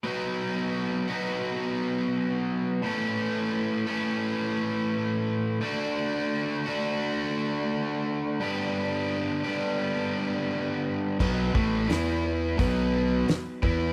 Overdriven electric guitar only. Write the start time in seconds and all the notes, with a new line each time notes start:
0.04 B2 F#3 B3 D#4 F#4
1.08 B2 F#3 B3 D#4 F#4
2.83 A2 E3 A3 C#4 A4
3.87 A2 E3 A3 C#4 A4
5.61 D3 A3 D4 F#4
6.66 D3 A3 D4 F#4
8.40 G2 D3 G3 B3 D4 G4
9.44 G2 D3 G3 B3 D4 G4
11.19 B2 F#3 B3
11.54 A2 E3 A3
11.88 E3 B3 E4
12.57 B2 F#3 B3
13.29 muted overdriven electric guitar stroke
13.62 E3 B3 E4